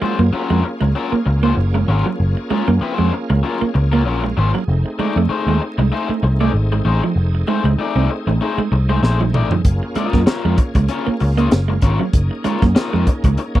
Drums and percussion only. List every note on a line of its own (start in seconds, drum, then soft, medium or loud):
9.03 snare medium
9.20 high tom medium
9.34 mid tom loud
9.51 floor tom medium
9.65 kick loud
9.65 closed hi-hat medium
9.95 closed hi-hat medium
10.13 kick medium
10.13 snare soft
10.27 snare loud
10.27 closed hi-hat medium
10.58 kick loud
10.58 closed hi-hat medium
10.75 kick loud
10.75 closed hi-hat medium
10.88 closed hi-hat medium
11.20 open hi-hat medium
11.38 closed hi-hat medium
11.51 snare loud
11.51 closed hi-hat medium
11.82 kick loud
11.82 closed hi-hat medium
12.13 kick loud
12.13 closed hi-hat medium
12.44 closed hi-hat medium
12.62 kick medium
12.62 snare soft
12.76 snare loud
12.76 closed hi-hat medium
13.07 kick loud
13.07 closed hi-hat medium
13.24 kick medium
13.24 closed hi-hat medium
13.37 closed hi-hat medium
13.55 kick medium